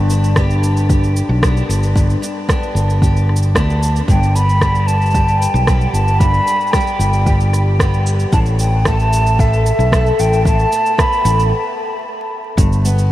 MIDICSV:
0, 0, Header, 1, 5, 480
1, 0, Start_track
1, 0, Key_signature, 1, "major"
1, 0, Tempo, 530973
1, 1767, Time_signature, 4, 2, 24, 8
1, 11860, End_track
2, 0, Start_track
2, 0, Title_t, "Flute"
2, 0, Program_c, 0, 73
2, 3703, Note_on_c, 0, 79, 89
2, 3937, Note_on_c, 0, 83, 104
2, 3950, Note_off_c, 0, 79, 0
2, 4402, Note_on_c, 0, 81, 101
2, 4415, Note_off_c, 0, 83, 0
2, 4865, Note_on_c, 0, 79, 83
2, 4879, Note_off_c, 0, 81, 0
2, 5350, Note_off_c, 0, 79, 0
2, 5356, Note_on_c, 0, 81, 89
2, 5596, Note_on_c, 0, 83, 103
2, 5610, Note_off_c, 0, 81, 0
2, 6070, Note_on_c, 0, 79, 81
2, 6083, Note_off_c, 0, 83, 0
2, 7038, Note_off_c, 0, 79, 0
2, 7533, Note_on_c, 0, 81, 96
2, 7587, Note_off_c, 0, 81, 0
2, 7766, Note_on_c, 0, 79, 80
2, 8013, Note_on_c, 0, 81, 97
2, 8027, Note_off_c, 0, 79, 0
2, 8497, Note_on_c, 0, 76, 92
2, 8511, Note_off_c, 0, 81, 0
2, 9221, Note_on_c, 0, 79, 92
2, 9235, Note_off_c, 0, 76, 0
2, 9454, Note_off_c, 0, 79, 0
2, 9458, Note_on_c, 0, 81, 98
2, 9944, Note_on_c, 0, 83, 94
2, 9958, Note_off_c, 0, 81, 0
2, 10416, Note_off_c, 0, 83, 0
2, 11860, End_track
3, 0, Start_track
3, 0, Title_t, "Steel-string acoustic guitar"
3, 0, Program_c, 1, 25
3, 0, Note_on_c, 1, 43, 83
3, 0, Note_on_c, 1, 59, 62
3, 0, Note_on_c, 1, 62, 61
3, 0, Note_on_c, 1, 67, 66
3, 91, Note_off_c, 1, 62, 0
3, 95, Note_on_c, 1, 62, 62
3, 335, Note_off_c, 1, 59, 0
3, 338, Note_on_c, 1, 59, 57
3, 340, Note_off_c, 1, 62, 0
3, 344, Note_on_c, 1, 62, 57
3, 347, Note_off_c, 1, 67, 0
3, 350, Note_on_c, 1, 67, 67
3, 807, Note_off_c, 1, 67, 0
3, 811, Note_on_c, 1, 67, 64
3, 1286, Note_off_c, 1, 59, 0
3, 1289, Note_on_c, 1, 59, 63
3, 1291, Note_off_c, 1, 62, 0
3, 1295, Note_on_c, 1, 62, 65
3, 1298, Note_off_c, 1, 67, 0
3, 1302, Note_on_c, 1, 67, 68
3, 1756, Note_off_c, 1, 43, 0
3, 1767, Note_on_c, 1, 43, 83
3, 2005, Note_off_c, 1, 62, 0
3, 2008, Note_on_c, 1, 62, 60
3, 2243, Note_off_c, 1, 59, 0
3, 2247, Note_on_c, 1, 59, 57
3, 2248, Note_off_c, 1, 62, 0
3, 2251, Note_on_c, 1, 62, 61
3, 2257, Note_off_c, 1, 67, 0
3, 2260, Note_on_c, 1, 67, 68
3, 2730, Note_off_c, 1, 67, 0
3, 2734, Note_on_c, 1, 67, 62
3, 3212, Note_off_c, 1, 59, 0
3, 3216, Note_on_c, 1, 59, 60
3, 3217, Note_off_c, 1, 62, 0
3, 3221, Note_on_c, 1, 62, 64
3, 3226, Note_off_c, 1, 67, 0
3, 3229, Note_on_c, 1, 67, 69
3, 3679, Note_off_c, 1, 43, 0
3, 3690, Note_on_c, 1, 43, 80
3, 3934, Note_off_c, 1, 62, 0
3, 3937, Note_off_c, 1, 59, 0
3, 3937, Note_on_c, 1, 59, 60
3, 4175, Note_on_c, 1, 55, 63
3, 4177, Note_off_c, 1, 59, 0
3, 4180, Note_on_c, 1, 59, 57
3, 4182, Note_off_c, 1, 67, 0
3, 4186, Note_on_c, 1, 67, 70
3, 4642, Note_off_c, 1, 67, 0
3, 4653, Note_on_c, 1, 67, 63
3, 5121, Note_off_c, 1, 55, 0
3, 5130, Note_off_c, 1, 67, 0
3, 5132, Note_on_c, 1, 55, 59
3, 5138, Note_off_c, 1, 59, 0
3, 5142, Note_on_c, 1, 59, 62
3, 5146, Note_on_c, 1, 67, 71
3, 5601, Note_off_c, 1, 43, 0
3, 5612, Note_on_c, 1, 43, 83
3, 5848, Note_off_c, 1, 59, 0
3, 5851, Note_on_c, 1, 59, 60
3, 6087, Note_off_c, 1, 55, 0
3, 6097, Note_off_c, 1, 67, 0
3, 6097, Note_on_c, 1, 55, 62
3, 6099, Note_off_c, 1, 59, 0
3, 6102, Note_on_c, 1, 59, 65
3, 6108, Note_on_c, 1, 67, 68
3, 6566, Note_off_c, 1, 67, 0
3, 6577, Note_on_c, 1, 67, 62
3, 7045, Note_off_c, 1, 55, 0
3, 7052, Note_off_c, 1, 67, 0
3, 7056, Note_on_c, 1, 55, 66
3, 7057, Note_off_c, 1, 59, 0
3, 7061, Note_on_c, 1, 59, 69
3, 7068, Note_on_c, 1, 67, 64
3, 7530, Note_off_c, 1, 43, 0
3, 7532, Note_on_c, 1, 45, 89
3, 7580, Note_off_c, 1, 55, 0
3, 7584, Note_off_c, 1, 67, 0
3, 7772, Note_off_c, 1, 59, 0
3, 7775, Note_on_c, 1, 59, 59
3, 8011, Note_on_c, 1, 57, 63
3, 8015, Note_off_c, 1, 59, 0
3, 8018, Note_on_c, 1, 59, 60
3, 8027, Note_on_c, 1, 69, 66
3, 8477, Note_off_c, 1, 69, 0
3, 8488, Note_on_c, 1, 69, 69
3, 8963, Note_off_c, 1, 57, 0
3, 8968, Note_off_c, 1, 69, 0
3, 8973, Note_on_c, 1, 57, 60
3, 8974, Note_off_c, 1, 59, 0
3, 8977, Note_on_c, 1, 59, 68
3, 8985, Note_on_c, 1, 69, 72
3, 9438, Note_off_c, 1, 45, 0
3, 9449, Note_on_c, 1, 45, 83
3, 9688, Note_off_c, 1, 59, 0
3, 9691, Note_on_c, 1, 59, 61
3, 9915, Note_off_c, 1, 57, 0
3, 9925, Note_off_c, 1, 69, 0
3, 9926, Note_on_c, 1, 57, 62
3, 9928, Note_off_c, 1, 59, 0
3, 9932, Note_on_c, 1, 59, 67
3, 9939, Note_on_c, 1, 69, 62
3, 10406, Note_off_c, 1, 57, 0
3, 10408, Note_off_c, 1, 45, 0
3, 10412, Note_off_c, 1, 69, 0
3, 10864, Note_off_c, 1, 59, 0
3, 11371, Note_on_c, 1, 43, 81
3, 11616, Note_on_c, 1, 59, 66
3, 11860, Note_off_c, 1, 43, 0
3, 11860, Note_off_c, 1, 59, 0
3, 11860, End_track
4, 0, Start_track
4, 0, Title_t, "Fingered electric bass"
4, 0, Program_c, 2, 33
4, 0, Note_on_c, 2, 31, 91
4, 1096, Note_off_c, 2, 31, 0
4, 1167, Note_on_c, 2, 35, 86
4, 1455, Note_off_c, 2, 35, 0
4, 1528, Note_on_c, 2, 31, 85
4, 1936, Note_off_c, 2, 31, 0
4, 2485, Note_on_c, 2, 31, 84
4, 3203, Note_off_c, 2, 31, 0
4, 3208, Note_on_c, 2, 38, 76
4, 3616, Note_off_c, 2, 38, 0
4, 3687, Note_on_c, 2, 31, 88
4, 4935, Note_off_c, 2, 31, 0
4, 5008, Note_on_c, 2, 35, 93
4, 5296, Note_off_c, 2, 35, 0
4, 5365, Note_on_c, 2, 31, 80
4, 5774, Note_off_c, 2, 31, 0
4, 6320, Note_on_c, 2, 31, 87
4, 7452, Note_off_c, 2, 31, 0
4, 7527, Note_on_c, 2, 33, 98
4, 8775, Note_off_c, 2, 33, 0
4, 8848, Note_on_c, 2, 35, 90
4, 9136, Note_off_c, 2, 35, 0
4, 9216, Note_on_c, 2, 33, 82
4, 9620, Note_off_c, 2, 33, 0
4, 10169, Note_on_c, 2, 33, 93
4, 10408, Note_off_c, 2, 33, 0
4, 11365, Note_on_c, 2, 31, 95
4, 11860, Note_off_c, 2, 31, 0
4, 11860, End_track
5, 0, Start_track
5, 0, Title_t, "Drums"
5, 90, Note_on_c, 9, 82, 73
5, 180, Note_off_c, 9, 82, 0
5, 216, Note_on_c, 9, 82, 35
5, 307, Note_off_c, 9, 82, 0
5, 326, Note_on_c, 9, 37, 94
5, 330, Note_on_c, 9, 36, 102
5, 330, Note_on_c, 9, 82, 40
5, 416, Note_off_c, 9, 37, 0
5, 420, Note_off_c, 9, 36, 0
5, 421, Note_off_c, 9, 82, 0
5, 457, Note_on_c, 9, 82, 21
5, 547, Note_off_c, 9, 82, 0
5, 574, Note_on_c, 9, 82, 78
5, 665, Note_off_c, 9, 82, 0
5, 695, Note_on_c, 9, 82, 32
5, 786, Note_off_c, 9, 82, 0
5, 810, Note_on_c, 9, 36, 100
5, 812, Note_on_c, 9, 82, 43
5, 900, Note_off_c, 9, 36, 0
5, 902, Note_off_c, 9, 82, 0
5, 938, Note_on_c, 9, 82, 21
5, 1028, Note_off_c, 9, 82, 0
5, 1053, Note_on_c, 9, 82, 78
5, 1144, Note_off_c, 9, 82, 0
5, 1289, Note_on_c, 9, 36, 99
5, 1291, Note_on_c, 9, 37, 96
5, 1296, Note_on_c, 9, 82, 43
5, 1379, Note_off_c, 9, 36, 0
5, 1382, Note_off_c, 9, 37, 0
5, 1386, Note_off_c, 9, 82, 0
5, 1418, Note_on_c, 9, 82, 22
5, 1509, Note_off_c, 9, 82, 0
5, 1538, Note_on_c, 9, 82, 75
5, 1629, Note_off_c, 9, 82, 0
5, 1655, Note_on_c, 9, 82, 32
5, 1745, Note_off_c, 9, 82, 0
5, 1768, Note_on_c, 9, 36, 95
5, 1780, Note_on_c, 9, 82, 42
5, 1859, Note_off_c, 9, 36, 0
5, 1870, Note_off_c, 9, 82, 0
5, 1898, Note_on_c, 9, 82, 20
5, 1988, Note_off_c, 9, 82, 0
5, 2017, Note_on_c, 9, 82, 70
5, 2108, Note_off_c, 9, 82, 0
5, 2249, Note_on_c, 9, 36, 106
5, 2255, Note_on_c, 9, 37, 84
5, 2259, Note_on_c, 9, 82, 41
5, 2340, Note_off_c, 9, 36, 0
5, 2345, Note_off_c, 9, 37, 0
5, 2350, Note_off_c, 9, 82, 0
5, 2379, Note_on_c, 9, 82, 19
5, 2469, Note_off_c, 9, 82, 0
5, 2499, Note_on_c, 9, 82, 72
5, 2590, Note_off_c, 9, 82, 0
5, 2620, Note_on_c, 9, 82, 32
5, 2710, Note_off_c, 9, 82, 0
5, 2729, Note_on_c, 9, 36, 93
5, 2741, Note_on_c, 9, 82, 45
5, 2819, Note_off_c, 9, 36, 0
5, 2831, Note_off_c, 9, 82, 0
5, 2862, Note_on_c, 9, 82, 21
5, 2952, Note_off_c, 9, 82, 0
5, 2976, Note_on_c, 9, 37, 29
5, 3040, Note_on_c, 9, 82, 80
5, 3066, Note_off_c, 9, 37, 0
5, 3095, Note_off_c, 9, 82, 0
5, 3095, Note_on_c, 9, 82, 33
5, 3186, Note_off_c, 9, 82, 0
5, 3210, Note_on_c, 9, 36, 98
5, 3214, Note_on_c, 9, 37, 94
5, 3219, Note_on_c, 9, 82, 42
5, 3301, Note_off_c, 9, 36, 0
5, 3304, Note_off_c, 9, 37, 0
5, 3309, Note_off_c, 9, 82, 0
5, 3344, Note_on_c, 9, 82, 21
5, 3434, Note_off_c, 9, 82, 0
5, 3461, Note_on_c, 9, 82, 75
5, 3551, Note_off_c, 9, 82, 0
5, 3581, Note_on_c, 9, 82, 31
5, 3672, Note_off_c, 9, 82, 0
5, 3690, Note_on_c, 9, 36, 99
5, 3703, Note_on_c, 9, 82, 40
5, 3780, Note_off_c, 9, 36, 0
5, 3793, Note_off_c, 9, 82, 0
5, 3826, Note_on_c, 9, 82, 20
5, 3916, Note_off_c, 9, 82, 0
5, 3940, Note_on_c, 9, 82, 74
5, 4031, Note_off_c, 9, 82, 0
5, 4062, Note_on_c, 9, 82, 29
5, 4152, Note_off_c, 9, 82, 0
5, 4170, Note_on_c, 9, 36, 96
5, 4172, Note_on_c, 9, 37, 90
5, 4177, Note_on_c, 9, 82, 39
5, 4261, Note_off_c, 9, 36, 0
5, 4263, Note_off_c, 9, 37, 0
5, 4267, Note_off_c, 9, 82, 0
5, 4296, Note_on_c, 9, 82, 20
5, 4386, Note_off_c, 9, 82, 0
5, 4414, Note_on_c, 9, 82, 74
5, 4504, Note_off_c, 9, 82, 0
5, 4534, Note_on_c, 9, 82, 15
5, 4572, Note_off_c, 9, 82, 0
5, 4572, Note_on_c, 9, 82, 20
5, 4614, Note_off_c, 9, 82, 0
5, 4614, Note_on_c, 9, 82, 24
5, 4651, Note_on_c, 9, 36, 93
5, 4653, Note_off_c, 9, 82, 0
5, 4653, Note_on_c, 9, 82, 42
5, 4741, Note_off_c, 9, 36, 0
5, 4743, Note_off_c, 9, 82, 0
5, 4775, Note_on_c, 9, 82, 20
5, 4866, Note_off_c, 9, 82, 0
5, 4900, Note_on_c, 9, 82, 72
5, 4990, Note_off_c, 9, 82, 0
5, 5020, Note_on_c, 9, 82, 32
5, 5111, Note_off_c, 9, 82, 0
5, 5128, Note_on_c, 9, 37, 84
5, 5130, Note_on_c, 9, 36, 100
5, 5133, Note_on_c, 9, 82, 42
5, 5219, Note_off_c, 9, 37, 0
5, 5220, Note_off_c, 9, 36, 0
5, 5223, Note_off_c, 9, 82, 0
5, 5253, Note_on_c, 9, 82, 20
5, 5344, Note_off_c, 9, 82, 0
5, 5374, Note_on_c, 9, 82, 76
5, 5465, Note_off_c, 9, 82, 0
5, 5495, Note_on_c, 9, 82, 30
5, 5585, Note_off_c, 9, 82, 0
5, 5608, Note_on_c, 9, 36, 100
5, 5611, Note_on_c, 9, 82, 41
5, 5699, Note_off_c, 9, 36, 0
5, 5701, Note_off_c, 9, 82, 0
5, 5730, Note_on_c, 9, 82, 18
5, 5821, Note_off_c, 9, 82, 0
5, 5853, Note_on_c, 9, 82, 69
5, 5943, Note_off_c, 9, 82, 0
5, 5972, Note_on_c, 9, 82, 14
5, 6030, Note_off_c, 9, 82, 0
5, 6030, Note_on_c, 9, 82, 18
5, 6085, Note_on_c, 9, 37, 85
5, 6087, Note_on_c, 9, 36, 88
5, 6090, Note_off_c, 9, 82, 0
5, 6090, Note_on_c, 9, 82, 39
5, 6150, Note_off_c, 9, 82, 0
5, 6150, Note_on_c, 9, 82, 24
5, 6176, Note_off_c, 9, 37, 0
5, 6178, Note_off_c, 9, 36, 0
5, 6211, Note_off_c, 9, 82, 0
5, 6211, Note_on_c, 9, 82, 19
5, 6302, Note_off_c, 9, 82, 0
5, 6330, Note_on_c, 9, 82, 78
5, 6421, Note_off_c, 9, 82, 0
5, 6446, Note_on_c, 9, 82, 31
5, 6536, Note_off_c, 9, 82, 0
5, 6566, Note_on_c, 9, 36, 95
5, 6568, Note_on_c, 9, 82, 41
5, 6656, Note_off_c, 9, 36, 0
5, 6658, Note_off_c, 9, 82, 0
5, 6693, Note_on_c, 9, 82, 20
5, 6783, Note_off_c, 9, 82, 0
5, 6810, Note_on_c, 9, 37, 26
5, 6814, Note_on_c, 9, 82, 71
5, 6900, Note_off_c, 9, 37, 0
5, 6905, Note_off_c, 9, 82, 0
5, 7047, Note_on_c, 9, 36, 97
5, 7052, Note_on_c, 9, 37, 89
5, 7056, Note_on_c, 9, 82, 40
5, 7138, Note_off_c, 9, 36, 0
5, 7142, Note_off_c, 9, 37, 0
5, 7147, Note_off_c, 9, 82, 0
5, 7176, Note_on_c, 9, 82, 21
5, 7266, Note_off_c, 9, 82, 0
5, 7291, Note_on_c, 9, 82, 65
5, 7382, Note_off_c, 9, 82, 0
5, 7410, Note_on_c, 9, 82, 28
5, 7500, Note_off_c, 9, 82, 0
5, 7526, Note_on_c, 9, 36, 90
5, 7526, Note_on_c, 9, 82, 42
5, 7616, Note_off_c, 9, 82, 0
5, 7617, Note_off_c, 9, 36, 0
5, 7646, Note_on_c, 9, 82, 20
5, 7737, Note_off_c, 9, 82, 0
5, 7766, Note_on_c, 9, 82, 72
5, 7857, Note_off_c, 9, 82, 0
5, 8003, Note_on_c, 9, 37, 95
5, 8008, Note_on_c, 9, 36, 90
5, 8008, Note_on_c, 9, 82, 41
5, 8094, Note_off_c, 9, 37, 0
5, 8098, Note_off_c, 9, 36, 0
5, 8098, Note_off_c, 9, 82, 0
5, 8131, Note_on_c, 9, 82, 20
5, 8221, Note_off_c, 9, 82, 0
5, 8252, Note_on_c, 9, 82, 77
5, 8342, Note_off_c, 9, 82, 0
5, 8376, Note_on_c, 9, 82, 32
5, 8467, Note_off_c, 9, 82, 0
5, 8490, Note_on_c, 9, 36, 84
5, 8498, Note_on_c, 9, 82, 38
5, 8580, Note_off_c, 9, 36, 0
5, 8588, Note_off_c, 9, 82, 0
5, 8620, Note_on_c, 9, 82, 19
5, 8710, Note_off_c, 9, 82, 0
5, 8735, Note_on_c, 9, 82, 69
5, 8825, Note_off_c, 9, 82, 0
5, 8858, Note_on_c, 9, 82, 32
5, 8949, Note_off_c, 9, 82, 0
5, 8970, Note_on_c, 9, 36, 96
5, 8976, Note_on_c, 9, 37, 92
5, 8980, Note_on_c, 9, 82, 39
5, 9061, Note_off_c, 9, 36, 0
5, 9066, Note_off_c, 9, 37, 0
5, 9071, Note_off_c, 9, 82, 0
5, 9097, Note_on_c, 9, 82, 21
5, 9188, Note_off_c, 9, 82, 0
5, 9215, Note_on_c, 9, 82, 75
5, 9305, Note_off_c, 9, 82, 0
5, 9340, Note_on_c, 9, 82, 29
5, 9430, Note_off_c, 9, 82, 0
5, 9450, Note_on_c, 9, 36, 97
5, 9460, Note_on_c, 9, 82, 44
5, 9540, Note_off_c, 9, 36, 0
5, 9551, Note_off_c, 9, 82, 0
5, 9575, Note_on_c, 9, 82, 19
5, 9666, Note_off_c, 9, 82, 0
5, 9693, Note_on_c, 9, 82, 77
5, 9784, Note_off_c, 9, 82, 0
5, 9817, Note_on_c, 9, 82, 31
5, 9907, Note_off_c, 9, 82, 0
5, 9930, Note_on_c, 9, 36, 94
5, 9933, Note_on_c, 9, 37, 91
5, 9938, Note_on_c, 9, 82, 39
5, 10020, Note_off_c, 9, 36, 0
5, 10024, Note_off_c, 9, 37, 0
5, 10028, Note_off_c, 9, 82, 0
5, 10058, Note_on_c, 9, 82, 20
5, 10149, Note_off_c, 9, 82, 0
5, 10173, Note_on_c, 9, 82, 73
5, 10264, Note_off_c, 9, 82, 0
5, 10301, Note_on_c, 9, 82, 31
5, 10391, Note_off_c, 9, 82, 0
5, 11368, Note_on_c, 9, 36, 100
5, 11373, Note_on_c, 9, 46, 57
5, 11377, Note_on_c, 9, 82, 42
5, 11459, Note_off_c, 9, 36, 0
5, 11463, Note_off_c, 9, 46, 0
5, 11468, Note_off_c, 9, 82, 0
5, 11503, Note_on_c, 9, 82, 21
5, 11593, Note_off_c, 9, 82, 0
5, 11617, Note_on_c, 9, 82, 77
5, 11708, Note_off_c, 9, 82, 0
5, 11738, Note_on_c, 9, 82, 34
5, 11829, Note_off_c, 9, 82, 0
5, 11860, End_track
0, 0, End_of_file